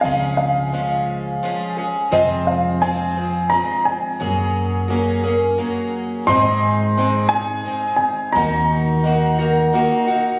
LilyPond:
<<
  \new Staff \with { instrumentName = "Upright piano" } { \time 3/4 \key aes \mixolydian \tempo 4 = 86 f''8 f''2 r8 | ees''8 f''8 aes''4 bes''8 aes''8~ | aes''2 r4 | c'''4. aes''4 aes''8 |
bes''2~ bes''8 r8 | }
  \new Staff \with { instrumentName = "Twelve-string acoustic guitar" } { \time 3/4 \key aes \mixolydian <des f aes des' aes'>4 <f aes des' aes'>4 <f aes des' aes'>8 <aes des' aes'>8 | <f, c f aes c' aes'>4 <f aes c' aes'>8 <f aes c' aes'>8 <f aes c' aes'>4 | <ges bes des' aes'>4 <ges bes des' aes'>8 <bes des' aes'>8 <ges bes des' aes'>4 | <aes, ees aes c' ees' aes'>4 <aes c' ees' aes'>8 <aes c' ees' aes'>8 <aes c' ees' aes'>4 |
<ees bes ees' ges'>4 <ees bes ees' ges'>8 <bes ees' ges'>8 <ees bes ees' ges'>8 <bes ees' ges'>8 | }
  \new Staff \with { instrumentName = "Upright bass" } { \clef bass \time 3/4 \key aes \mixolydian des,2 r4 | f,2 r4 | ges,2 r4 | aes,2 r4 |
ees,2 r4 | }
>>